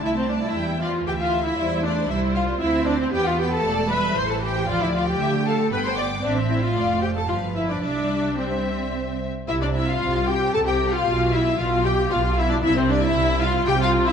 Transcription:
<<
  \new Staff \with { instrumentName = "Violin section" } { \time 3/4 \key c \major \tempo 4 = 115 e''16 c''16 d''16 e''8. f''8 g''16 f''8 e''16~ | e''8 d''8 e''8 f''8 e''8 d''16 c''16 | g''16 f''16 g''16 a''8. b''8 c'''16 a''16 g''8 | f''16 e''16 f''16 g''8. a''8 b''16 c'''16 d'''8 |
d''16 c''16 e''16 f''8. g''16 a''16 f''8 e''16 d''16 | d''4 c''4. r8 | e''16 d''16 e''16 f''8. g''8 a''16 g''8 f''16~ | f''8 e''8 f''8 g''8 f''8 e''16 d''16 |
e''16 c''16 d''16 e''8. f''8 g''16 f''8 e''16 | }
  \new Staff \with { instrumentName = "Violin section" } { \time 3/4 \key c \major a''4 g''8 d''8 e''4 | c''2 c''4 | b'4 d''8 e''8 c''4 | d''4 e''8 f''8 g''4 |
e''4 d''8 c''8 b'4 | e''4 e''4. r8 | e''16 d''16 e''16 f''8. g''8 a''16 g''8 f''16~ | f''8 e''8 f''8 g''8 f''8 e''16 d''16 |
e''16 c''16 d''16 e''8. f''8 g''16 f''8 e''16 | }
  \new Staff \with { instrumentName = "Viola section" } { \time 3/4 \key c \major e'16 c'16 d'16 e'8. f'8 g'16 f'8 e'16~ | e'8 d'8 e'8 f'8 e'8 d'16 c'16 | g'16 f'16 g'16 a'8. b'8 c''16 a'16 g'8 | f'16 e'16 f'16 g'8. a'8 b'16 c''16 d''8 |
d'16 c'16 e'16 f'8. g'16 a'16 f'8 e'16 d'16 | d'4 c'4. r8 | e'16 d'16 e'16 f'8. g'8 a'16 g'8 f'16~ | f'8 e'8 f'8 g'8 f'8 e'16 d'16 |
e'16 c'16 d'16 e'8. f'8 g'16 f'8 e'16 | }
  \new Staff \with { instrumentName = "Cello section" } { \clef bass \time 3/4 \key c \major a4 g8 f8 e4 | g8 a8 g4 c'4 | b4 a8 g8 e4 | f4 a4 b4 |
c'4 a4 f4 | g2~ g8 r8 | c4 c4 c4 | b,4 b,4 b,4 |
c4 c4 c4 | }
  \new Staff \with { instrumentName = "Double bass section" } { \clef bass \time 3/4 \key c \major c,4 e,4 d,4 | e,4 c,4 d,4 | e,4 e,,4 a,,4 | d,4 d4 g,,4 |
a,,4 f,,4 g,,4 | c,2~ c,8 r8 | c,4 c,4 c,4 | b,,4 b,,4 b,,4 |
c,4 c,4 c,4 | }
>>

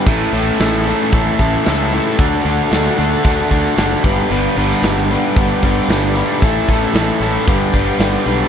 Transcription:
<<
  \new Staff \with { instrumentName = "Tonewheel organ" } { \time 4/4 \key a \mixolydian \tempo 4 = 113 <a e' cis''>1 | <a fis' d''>2.~ <a fis' d''>8 <b g' d''>8~ | <b g' d''>1 | <a e' cis''>2 <b g' d''>2 | }
  \new Staff \with { instrumentName = "Overdriven electric guitar" } { \time 4/4 \key a \mixolydian <a, a cis' e' a'>8 <a, a cis' e' a'>8 <a, a cis' e' a'>8 <a, a cis' e' a'>8 <a, a cis' e' a'>8 <a, a cis' e' a'>8 <a, a cis' e' a'>8 <a, a cis' e' a'>8 | <d d' fis' a'>8 <d d' fis' a'>8 <d d' fis' a'>8 <d d' fis' a'>8 <d d' fis' a'>8 <d d' fis' a'>8 <d d' fis' a'>8 <g b d' b'>8 | <g b d' b'>8 <g b d' b'>8 <g b d' b'>8 <g b d' b'>8 <g b d' b'>8 <g b d' b'>8 <g b d' b'>8 <g b d' b'>8 | <a, e a cis' e' a'>8 <a, e a cis' e' a'>8 <a, e a cis' e' a'>8 <a, e a cis' e' a'>8 <g b d' b'>8 <g b d' b'>8 <g b d' b'>8 <g b d' b'>8 | }
  \new Staff \with { instrumentName = "Overdriven electric guitar" } { \clef bass \time 4/4 \key a \mixolydian <a, e a>8 <a, e a>8 <a, e a>8 <a, e a>8 <a, e a>8 <a, e a>8 <a, e a>8 <a, e a>8 | <d a d'>8 <d a d'>8 <d a d'>8 <d a d'>8 <d a d'>8 <d a d'>8 <d a d'>8 <g, d g>8 | <g, d g>8 <g, d g>8 <g, d g>8 <g, d g>8 <g, d g>8 <g, d g>8 <g, d g>8 <g, d g>8 | <a, e a>8 <a, e a>8 <a, e a>8 <a, e a>8 <g, d g>8 <g, d g>8 <g, d g>8 <g, d g>8 | }
  \new Staff \with { instrumentName = "Fingered electric bass" } { \clef bass \time 4/4 \key a \mixolydian a,,8 a,,8 a,,4 a,,8 a,,8 cis,4 | d,8 d,8 d,8 d,8 d,8 d,8 fis,,8 g,,8 | g,,8 g,,8 g,,4 g,,8 g,,8 g,,4 | a,,8 a,,8 a,,8 a,,8 g,,8 g,,8 g,,8 b,,8 | }
  \new DrumStaff \with { instrumentName = "Drums" } \drummode { \time 4/4 <cymc bd>8 hho8 <hho sn>8 hho8 <hho bd>8 <hho bd>8 <hho sn>8 hho8 | <hho bd>8 hho8 <hho sn>8 hho8 <hho bd>8 <hho bd>8 <hho sn>8 <hho bd>8 | cymc8 hho16 sn16 <hho sn>8 hho8 <hho bd>8 <hho bd>8 <hho sn>8 hho8 | <hho bd>8 <hho bd>16 sn16 <hho sn>8 hho8 <hho bd>8 <hho bd>8 <hho sn>8 hho8 | }
>>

